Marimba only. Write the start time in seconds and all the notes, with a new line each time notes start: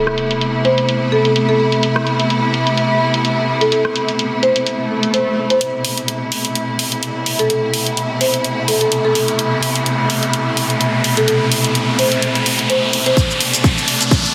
0.65 C5
1.12 A4
1.25 A4
1.49 A4
1.60 A4
3.61 A4
3.72 A4
4.43 C5
5.14 C5
5.50 C5
7.39 A4
7.50 A4
8.21 C5
8.68 A4
8.81 A4
9.05 A4
9.15 A4
11.17 A4
11.28 A4
11.99 C5
12.70 C5
13.06 C5